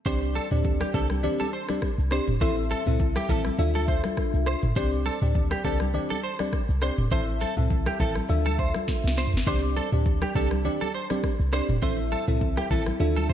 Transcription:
0.06 808-style bass C2, fm electric piano C4 D4 G4 D5, clean electric guitar C5, kick, low conga, shaker
0.21 shaker
0.35 clean electric guitar A4, high conga, shaker
0.50 808-style bass D2, fm electric piano C4 D4 G4 D5, mid tom, shaker
0.64 kick, low conga, shaker
0.81 clean electric guitar G4, cross-stick, high conga, shaker
0.94 808-style bass C2, fm electric piano C4 D4 G4 D5, clean electric guitar A4, kick, low conga, shaker
1.10 cross-stick, high conga, shaker
1.23 fm electric piano C4 D4 G4 D5, low conga, shaker
1.40 clean electric guitar A4, high conga, shaker
1.53 clean electric guitar C5, shaker
1.69 fm electric piano C4 D4 G4 D5, cross-stick, high conga, shaker
1.81 kick, cross-stick, shaker
1.98 808-style bass C2, shaker
2.10 fm electric piano C4 D4 G4 D5, clean electric guitar C5, cross-stick, shaker
2.27 808-style bass E1, mid tom, shaker
2.41 808-style bass A1, fm electric piano C4 E4 A4 E5, clean electric guitar C5, kick, low conga, shaker
2.57 shaker
2.70 clean electric guitar A4, high conga, shaker
2.85 808-style bass C2, fm electric piano C4 E4 A4 E5, mid tom, shaker
2.99 kick, low conga, shaker
3.16 clean electric guitar G4, cross-stick, high conga, shaker
3.29 808-style bass A1, fm electric piano C4 E4 A4 E5, clean electric guitar A4, kick, low conga, shaker
3.45 cross-stick, high conga, shaker
3.58 808-style bass D2, fm electric piano D4 F4 A4 E5, low conga, shaker
3.75 clean electric guitar A4, high conga, shaker
3.88 clean electric guitar C5, kick, shaker
4.04 cross-stick, high conga, shaker
4.17 kick, cross-stick, shaker
4.34 808-style bass C2, shaker
4.46 clean electric guitar C5, cross-stick, shaker
4.62 808-style bass G1, mid tom, shaker
4.76 808-style bass C2, fm electric piano C4 D4 G4 D5, clean electric guitar C5, kick, low conga, shaker
4.92 shaker
5.05 clean electric guitar A4, high conga, shaker
5.21 808-style bass D2, fm electric piano C4 D4 G4 D5, mid tom, shaker
5.34 kick, low conga, shaker
5.51 clean electric guitar G4, cross-stick, high conga, shaker
5.64 808-style bass C2, fm electric piano C4 D4 G4 D5, clean electric guitar A4, kick, low conga, shaker
5.80 cross-stick, high conga, shaker
5.93 fm electric piano C4 D4 G4 D5, low conga, shaker
6.10 clean electric guitar A4, high conga, shaker
6.23 clean electric guitar C5, shaker
6.39 fm electric piano C4 D4 G4 D5, cross-stick, high conga, shaker
6.52 kick, cross-stick, shaker
6.69 808-style bass C2, shaker
6.81 fm electric piano C4 D4 G4 D5, clean electric guitar C5, cross-stick, shaker
6.97 808-style bass E1, mid tom, shaker
7.11 808-style bass A1, fm electric piano C4 E4 A4 E5, clean electric guitar C5, kick, low conga, shaker
7.27 shaker
7.41 clean electric guitar A4, open hi-hat, high conga, shaker
7.56 808-style bass C2, fm electric piano C4 E4 A4 E5, mid tom, shaker
7.70 kick, low conga, shaker
7.86 clean electric guitar G4, cross-stick, high conga, shaker
8.00 808-style bass A1, fm electric piano C4 E4 A4 E5, clean electric guitar A4, kick, low conga, shaker
8.15 cross-stick, high conga, shaker
8.28 808-style bass D2, fm electric piano D4 F4 A4 E5, low conga, shaker
8.46 clean electric guitar A4, high conga, shaker
8.59 clean electric guitar C5, kick, shaker
8.74 cross-stick, high conga, shaker
8.87 kick, snare, shaker
9.04 808-style bass C2, snare, shaker
9.16 clean electric guitar C5, snare, shaker
9.27 floor tom
9.33 808-style bass G1, shaker
9.37 snare
9.47 808-style bass C2, fm electric piano C4 D4 G4 D5, clean electric guitar C5, kick, low conga, shaker
9.62 shaker
9.76 clean electric guitar A4, high conga, shaker
9.92 808-style bass D2, fm electric piano C4 D4 G4 D5, mid tom, shaker
10.05 kick, low conga, shaker
10.22 clean electric guitar G4, cross-stick, high conga, shaker
10.35 808-style bass C2, fm electric piano C4 D4 G4 D5, clean electric guitar A4, kick, low conga, shaker
10.51 cross-stick, high conga, shaker
10.64 fm electric piano C4 D4 G4 D5, low conga, shaker
10.81 clean electric guitar A4, high conga, shaker
10.94 clean electric guitar C5, shaker
11.10 fm electric piano C4 D4 G4 D5, cross-stick, high conga, shaker
11.23 kick, cross-stick, shaker
11.40 808-style bass C2, shaker
11.52 fm electric piano C4 D4 G4 D5, clean electric guitar C5, cross-stick, shaker
11.68 808-style bass E1, mid tom, shaker
11.82 808-style bass A1, fm electric piano C4 E4 A4 E5, clean electric guitar C5, kick, low conga, shaker
11.98 shaker
12.12 clean electric guitar A4, high conga, shaker
12.27 808-style bass C2, fm electric piano C4 E4 A4 E5, mid tom, shaker
12.41 kick, low conga, shaker
12.57 clean electric guitar G4, cross-stick, high conga, shaker
12.70 808-style bass A1, fm electric piano C4 E4 A4 E5, clean electric guitar A4, kick, low conga, shaker
12.86 cross-stick, high conga, shaker
12.99 808-style bass D2, fm electric piano D4 F4 A4 E5, low conga, shaker
13.16 clean electric guitar A4, high conga, shaker
13.29 clean electric guitar C5, kick

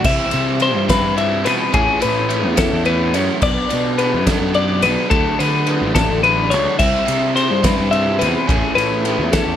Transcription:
0.04 fingered electric bass C3, overdriven electric guitar E3 G3 C4 E4, clean electric guitar E5, kick, crash
0.31 fingered electric bass C3, overdriven electric guitar E3 G3 C4 E4, ride
0.60 overdriven electric guitar E3 G3 C4 E4, clean electric guitar C5, ride
0.75 fingered electric bass G2
0.88 overdriven electric guitar E3 G3 C4 E4, clean electric guitar B4, kick, snare, ride
1.03 fingered electric bass G2
1.16 overdriven electric guitar E3 G3 C4 E4, clean electric guitar E5, ride
1.44 fingered electric bass B2, overdriven electric guitar E3 G3 C4 E4, clean electric guitar B4, ride
1.72 fingered electric bass A2, overdriven electric guitar E3 A3 C#4 E4, clean electric guitar G#4, kick, ride
1.99 overdriven electric guitar E3 A3 C#4 E4, clean electric guitar B4, ride
2.04 fingered electric bass A2
2.28 overdriven electric guitar E3 A3 C#4 E4, ride
2.47 fingered electric bass E2
2.56 overdriven electric guitar E3 A3 C#4 E4, clean electric guitar A4, kick, snare, ride
2.73 fingered electric bass E2
2.85 overdriven electric guitar E3 A3 C#4 E4, clean electric guitar B4, ride
3.14 fingered electric bass F#2, overdriven electric guitar E3 A3 C#4 E4, clean electric guitar C#5, ride
3.41 fingered electric bass B1, overdriven electric guitar B2 F#3 B3 D4, clean electric guitar D5, kick, crash
3.69 overdriven electric guitar B2 F#3 B3 D4, fingered electric bass B2, ride
3.98 overdriven electric guitar B2 F#3 B3 D4, clean electric guitar B4, ride
4.14 fingered electric bass F#2
4.26 overdriven electric guitar B2 F#3 B3 D4, clean electric guitar A4, kick, snare, ride
4.41 fingered electric bass F#2
4.54 overdriven electric guitar B2 F#3 B3 D4, clean electric guitar D5, ride
4.82 fingered electric bass B1, overdriven electric guitar B2 F#3 B3 D4, clean electric guitar B4, ride
5.10 fingered electric bass D2, overdriven electric guitar D3 F#3 A3 D4, clean electric guitar A4, kick, ride
5.39 overdriven electric guitar D3 F#3 A3 D4, fingered electric bass D3, clean electric guitar B4, ride
5.66 overdriven electric guitar D3 F#3 A3 D4, ride
5.81 fingered electric bass A1
5.95 overdriven electric guitar D3 F#3 A3 D4, clean electric guitar A4, kick, snare, ride
6.09 fingered electric bass A1
6.23 overdriven electric guitar D3 F#3 A3 D4, clean electric guitar B4, ride
6.50 fingered electric bass C#2, overdriven electric guitar D3 F#3 A3 D4, clean electric guitar C#5, ride
6.79 fingered electric bass C2, overdriven electric guitar C3 G3 C4 E4, clean electric guitar E5, kick, crash
7.05 overdriven electric guitar C3 G3 C4 E4, fingered electric bass C3, ride
7.35 overdriven electric guitar C3 G3 C4 E4, clean electric guitar C5, ride
7.50 fingered electric bass G2
7.63 overdriven electric guitar C3 G3 C4 E4, clean electric guitar B4, kick, snare, ride
7.80 fingered electric bass G2
7.91 overdriven electric guitar C3 G3 C4 E4, clean electric guitar E5, ride
8.19 fingered electric bass E2, overdriven electric guitar C3 G3 C4 E4, clean electric guitar B4, ride
8.47 fingered electric bass A1, overdriven electric guitar E3 A3 C#4 E4, clean electric guitar G#4, kick, ride
8.75 fingered electric bass A2, overdriven electric guitar E3 A3 C#4 E4, clean electric guitar B4, ride
9.05 overdriven electric guitar E3 A3 C#4 E4, ride
9.18 fingered electric bass E2
9.32 overdriven electric guitar E3 A3 C#4 E4, clean electric guitar A4, kick, snare, ride
9.47 fingered electric bass E2

